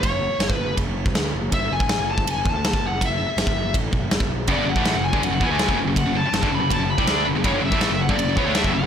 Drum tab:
RD |b---b---b---b---|b---b---b---b---|b---b---b---b---|b---b---b---b---|
SD |----o-------o---|----o-------o---|----o-------o---|----o-------o---|
BD |o----o--o--o----|o--o---o--o--o--|o----o--o-o--o--|o--o---o--o--o--|

RD |b---b---b---b---|b---b---b---b---|
SD |----o-------o---|----o-------o---|
BD |o----o--o--o----|o--o---o--o--o--|